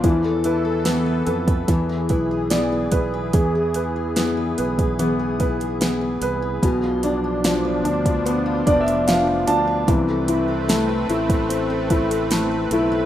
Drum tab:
HH |x-x-x-xxx-x-x-x-|x-x-x-xxx-xxx-x-|x-x-x-xxx-xxx-x-|x-x-x-xxx-xxx-x-|
SD |----o-------o---|----o-------o---|----o-------o---|----o-------o---|
BD |o------oo-o---o-|o------o--o-----|o------o--o-----|o------o--o-----|